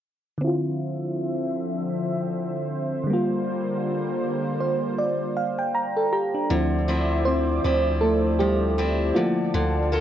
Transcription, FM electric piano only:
0.38 3.02 D3 medium
0.38 3.04 C4 medium
0.44 3.05 E4 medium
0.44 3.07 F4 medium
3.04 6.06 D3 medium
3.04 6.07 G3 medium
3.10 6.09 A#3 medium
3.10 5.73 F4 medium
4.60 4.96 C5 medium
4.98 5.34 D5 medium
5.37 5.57 F5 medium
5.59 5.73 G5 medium
5.75 6.10 A#5 medium
5.97 6.12 A4 medium
6.13 6.33 G4 medium
6.13 6.48 A#5 medium
6.34 6.70 D4 medium
6.50 7.03 F3 medium
6.50 7.03 C4 soft
6.50 7.03 E4 medium
7.25 7.99 C4 medium
7.25 8.04 C5 loud
8.01 8.38 A3 medium
8.01 8.41 A4 medium
8.39 9.13 G3 medium
8.39 9.18 G4 medium
9.15 10.00 F3 medium
9.15 10.00 A3 medium
9.15 10.00 A#3 soft
9.15 9.17 F4 medium
9.15 10.00 F4 medium

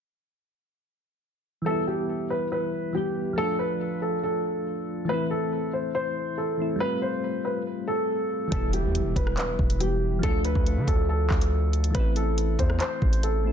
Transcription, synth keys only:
1.62 2.90 E3 medium
1.62 2.91 G3 medium
1.68 2.93 B3 medium
1.68 2.94 E4 medium
2.93 3.37 E3 soft
2.93 3.37 G3 soft
2.93 3.38 B3 soft
2.97 3.39 G4 medium
3.33 5.03 F3 medium
3.33 5.05 A3 medium
3.39 5.06 D4 medium
3.39 5.08 F4 medium
5.05 6.54 E3 medium
5.05 6.55 A3 medium
5.11 6.57 C4 medium
5.11 6.58 E4 medium
6.57 6.80 E3 soft
6.57 6.78 A3 soft
6.57 6.81 C4 soft
6.62 6.82 E4 medium
6.76 8.46 G3 medium
6.76 8.48 A3 medium
6.82 8.49 C4 medium
6.82 8.51 F4 medium
8.47 9.76 E3 medium
8.47 9.77 G3 medium
8.53 9.79 B3 medium
8.53 9.80 E4 medium
9.79 10.22 E3 soft
9.79 10.23 G3 soft
9.79 10.24 B3 soft
9.83 10.25 G4 medium
10.19 11.89 F3 medium
10.19 11.91 A3 medium
10.25 11.92 D4 medium
10.25 11.94 F4 medium
11.91 13.40 E3 medium
11.91 13.41 A3 medium
11.96 13.43 C4 medium
11.96 13.44 E4 medium
13.43 13.52 E3 medium
13.43 13.52 A3 soft
13.43 13.52 C4 soft
13.47 13.52 E4 medium

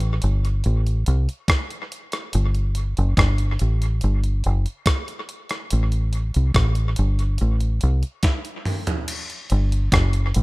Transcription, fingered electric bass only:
0.00 0.18 A1 medium
0.24 0.62 G1 medium
0.66 1.04 A1 medium
1.08 1.27 C2 medium
2.35 2.94 G1 medium
2.98 3.17 F#1 medium
3.18 3.56 G1 medium
3.61 3.99 A1 medium
4.04 4.42 G1 medium
4.46 4.65 F#1 medium
5.73 6.31 A1 loud
6.36 6.54 C2 medium
6.55 6.94 A1 medium
6.99 7.37 G1 medium
7.41 7.79 A1 loud
7.83 8.02 C2 medium
9.52 9.90 G1 loud
9.93 10.31 F#1 medium
10.36 10.43 A1 loud

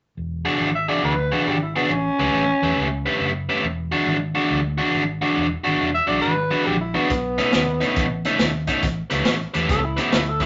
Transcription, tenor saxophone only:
0.75 0.90 E5 medium
0.89 1.03 D5 medium
1.04 1.50 B4 medium
1.49 1.62 G4 medium
1.62 1.76 E4 medium
1.76 1.91 B3 medium
1.90 3.16 C#4 loud
5.94 6.08 E5 medium
6.08 6.21 D5 medium
6.22 6.68 B4 medium
6.66 6.80 G4 medium
6.81 6.97 E4 medium
6.96 7.10 B3 medium
7.10 8.36 B3 medium
9.71 9.86 A4 medium
9.84 10.02 E4 medium
10.00 10.13 B3 medium
10.14 10.31 E4 medium
10.29 10.44 A4 medium
10.42 10.46 E4 medium

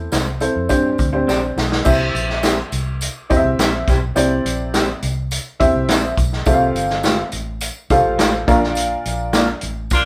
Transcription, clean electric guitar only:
0.12 0.23 C4 medium
0.12 0.23 E4 medium
0.12 0.23 A4 medium
0.12 0.23 C5 medium
1.27 1.38 C4 medium
1.27 1.39 D4 medium
1.27 1.39 G4 medium
1.27 1.39 C5 medium
2.43 2.54 C4 medium
2.43 2.54 E4 medium
2.43 2.54 G4 medium
2.43 2.55 C5 medium
3.60 3.70 C4 medium
3.60 3.70 E4 medium
3.60 3.70 G4 medium
3.60 3.70 C5 medium
3.88 3.96 C4 medium
3.88 3.97 E4 medium
3.88 3.97 G4 medium
3.88 3.97 C5 medium
4.74 4.85 C4 medium
4.74 4.85 E4 medium
4.74 4.85 G4 loud
4.74 4.85 C5 medium
5.89 6.00 C4 medium
5.89 6.00 E4 loud
5.89 6.00 G4 medium
5.89 6.00 C5 loud
7.04 7.15 A3 medium
7.04 7.15 F4 medium
7.04 7.15 G4 medium
7.04 7.16 C5 medium
8.18 8.30 A3 medium
8.18 8.30 F4 medium
8.18 8.30 G4 medium
8.18 8.30 C5 medium
8.47 8.56 A#3 medium
8.47 8.57 D4 medium
8.47 8.57 F4 medium
8.47 8.57 A#4 medium
9.33 9.45 A#3 loud
9.33 9.45 D4 loud
9.33 9.45 F4 loud
9.33 9.45 A#4 loud

